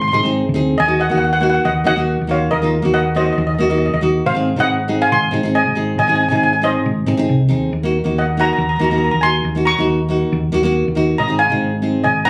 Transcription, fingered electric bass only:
0, 0, Header, 1, 2, 480
1, 0, Start_track
1, 0, Tempo, 433526
1, 868, Time_signature, 4, 2, 24, 8
1, 13617, End_track
2, 0, Start_track
2, 0, Title_t, "Fingered electric bass"
2, 0, Program_c, 0, 33
2, 0, Note_on_c, 0, 32, 107
2, 111, Note_off_c, 0, 32, 0
2, 167, Note_on_c, 0, 32, 91
2, 467, Note_off_c, 0, 32, 0
2, 540, Note_on_c, 0, 38, 84
2, 824, Note_off_c, 0, 38, 0
2, 884, Note_on_c, 0, 39, 103
2, 1186, Note_off_c, 0, 39, 0
2, 1257, Note_on_c, 0, 39, 83
2, 1743, Note_off_c, 0, 39, 0
2, 1830, Note_on_c, 0, 39, 107
2, 2030, Note_off_c, 0, 39, 0
2, 2088, Note_on_c, 0, 39, 89
2, 2388, Note_off_c, 0, 39, 0
2, 2451, Note_on_c, 0, 39, 89
2, 2739, Note_off_c, 0, 39, 0
2, 2799, Note_on_c, 0, 39, 107
2, 3103, Note_off_c, 0, 39, 0
2, 3163, Note_on_c, 0, 39, 85
2, 3655, Note_off_c, 0, 39, 0
2, 3740, Note_on_c, 0, 39, 117
2, 3945, Note_off_c, 0, 39, 0
2, 3989, Note_on_c, 0, 39, 96
2, 4298, Note_off_c, 0, 39, 0
2, 4359, Note_on_c, 0, 39, 93
2, 4653, Note_off_c, 0, 39, 0
2, 4714, Note_on_c, 0, 32, 101
2, 5021, Note_off_c, 0, 32, 0
2, 5068, Note_on_c, 0, 32, 90
2, 5567, Note_off_c, 0, 32, 0
2, 5668, Note_on_c, 0, 32, 111
2, 5870, Note_off_c, 0, 32, 0
2, 5903, Note_on_c, 0, 32, 99
2, 6215, Note_off_c, 0, 32, 0
2, 6280, Note_on_c, 0, 32, 91
2, 6573, Note_off_c, 0, 32, 0
2, 6622, Note_on_c, 0, 32, 111
2, 6934, Note_off_c, 0, 32, 0
2, 6994, Note_on_c, 0, 32, 94
2, 7490, Note_off_c, 0, 32, 0
2, 7593, Note_on_c, 0, 32, 111
2, 7793, Note_off_c, 0, 32, 0
2, 7837, Note_on_c, 0, 32, 91
2, 8035, Note_off_c, 0, 32, 0
2, 8075, Note_on_c, 0, 36, 85
2, 8289, Note_off_c, 0, 36, 0
2, 8314, Note_on_c, 0, 39, 82
2, 8529, Note_off_c, 0, 39, 0
2, 8554, Note_on_c, 0, 39, 110
2, 8860, Note_off_c, 0, 39, 0
2, 8917, Note_on_c, 0, 39, 88
2, 9411, Note_off_c, 0, 39, 0
2, 9502, Note_on_c, 0, 39, 102
2, 9706, Note_off_c, 0, 39, 0
2, 9747, Note_on_c, 0, 39, 92
2, 10056, Note_off_c, 0, 39, 0
2, 10120, Note_on_c, 0, 39, 89
2, 10412, Note_off_c, 0, 39, 0
2, 10459, Note_on_c, 0, 39, 109
2, 10771, Note_off_c, 0, 39, 0
2, 10834, Note_on_c, 0, 39, 91
2, 11328, Note_off_c, 0, 39, 0
2, 11432, Note_on_c, 0, 39, 108
2, 11630, Note_off_c, 0, 39, 0
2, 11660, Note_on_c, 0, 39, 95
2, 11971, Note_off_c, 0, 39, 0
2, 12044, Note_on_c, 0, 39, 87
2, 12333, Note_off_c, 0, 39, 0
2, 12396, Note_on_c, 0, 32, 106
2, 12700, Note_off_c, 0, 32, 0
2, 12760, Note_on_c, 0, 32, 85
2, 13251, Note_off_c, 0, 32, 0
2, 13344, Note_on_c, 0, 32, 107
2, 13545, Note_off_c, 0, 32, 0
2, 13617, End_track
0, 0, End_of_file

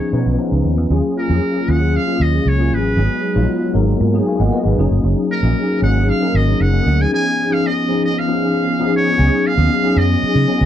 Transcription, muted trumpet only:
0, 0, Header, 1, 2, 480
1, 0, Start_track
1, 0, Tempo, 517688
1, 841, Time_signature, 4, 2, 24, 8
1, 9879, End_track
2, 0, Start_track
2, 0, Title_t, "Muted trumpet"
2, 0, Program_c, 0, 59
2, 0, Note_on_c, 0, 73, 105
2, 373, Note_off_c, 0, 73, 0
2, 1095, Note_on_c, 0, 70, 86
2, 1575, Note_on_c, 0, 78, 99
2, 1589, Note_off_c, 0, 70, 0
2, 1819, Note_on_c, 0, 77, 98
2, 1833, Note_off_c, 0, 78, 0
2, 2059, Note_on_c, 0, 75, 90
2, 2073, Note_off_c, 0, 77, 0
2, 2299, Note_on_c, 0, 73, 90
2, 2313, Note_off_c, 0, 75, 0
2, 2542, Note_on_c, 0, 71, 93
2, 2556, Note_off_c, 0, 73, 0
2, 3490, Note_off_c, 0, 71, 0
2, 4925, Note_on_c, 0, 70, 84
2, 5368, Note_off_c, 0, 70, 0
2, 5410, Note_on_c, 0, 78, 92
2, 5651, Note_on_c, 0, 77, 94
2, 5665, Note_off_c, 0, 78, 0
2, 5898, Note_on_c, 0, 75, 89
2, 5911, Note_off_c, 0, 77, 0
2, 6132, Note_on_c, 0, 78, 102
2, 6146, Note_off_c, 0, 75, 0
2, 6501, Note_on_c, 0, 80, 99
2, 6515, Note_off_c, 0, 78, 0
2, 6610, Note_off_c, 0, 80, 0
2, 6624, Note_on_c, 0, 80, 111
2, 6981, Note_on_c, 0, 77, 96
2, 6994, Note_off_c, 0, 80, 0
2, 7106, Note_on_c, 0, 75, 103
2, 7120, Note_off_c, 0, 77, 0
2, 7453, Note_off_c, 0, 75, 0
2, 7467, Note_on_c, 0, 75, 94
2, 7588, Note_on_c, 0, 77, 90
2, 7602, Note_off_c, 0, 75, 0
2, 8294, Note_off_c, 0, 77, 0
2, 8308, Note_on_c, 0, 73, 109
2, 8778, Note_on_c, 0, 77, 106
2, 8792, Note_off_c, 0, 73, 0
2, 9251, Note_on_c, 0, 75, 115
2, 9265, Note_off_c, 0, 77, 0
2, 9879, Note_off_c, 0, 75, 0
2, 9879, End_track
0, 0, End_of_file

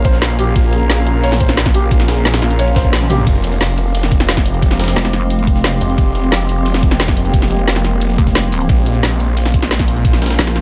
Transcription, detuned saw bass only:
0, 0, Header, 1, 2, 480
1, 0, Start_track
1, 0, Key_signature, -4, "minor"
1, 0, Tempo, 338983
1, 789, Time_signature, 4, 2, 24, 8
1, 15025, End_track
2, 0, Start_track
2, 0, Title_t, "Detuned saw bass"
2, 0, Program_c, 0, 39
2, 0, Note_on_c, 0, 34, 101
2, 769, Note_off_c, 0, 34, 0
2, 788, Note_on_c, 0, 34, 103
2, 2689, Note_off_c, 0, 34, 0
2, 2708, Note_on_c, 0, 34, 98
2, 3409, Note_off_c, 0, 34, 0
2, 3428, Note_on_c, 0, 34, 101
2, 4609, Note_off_c, 0, 34, 0
2, 4628, Note_on_c, 0, 29, 102
2, 5089, Note_off_c, 0, 29, 0
2, 5108, Note_on_c, 0, 29, 100
2, 7009, Note_off_c, 0, 29, 0
2, 8229, Note_on_c, 0, 29, 100
2, 8449, Note_off_c, 0, 29, 0
2, 8468, Note_on_c, 0, 29, 103
2, 8929, Note_off_c, 0, 29, 0
2, 8949, Note_on_c, 0, 29, 98
2, 10850, Note_off_c, 0, 29, 0
2, 10869, Note_on_c, 0, 29, 96
2, 11569, Note_off_c, 0, 29, 0
2, 12308, Note_on_c, 0, 34, 102
2, 12769, Note_off_c, 0, 34, 0
2, 12789, Note_on_c, 0, 34, 98
2, 14689, Note_off_c, 0, 34, 0
2, 15025, End_track
0, 0, End_of_file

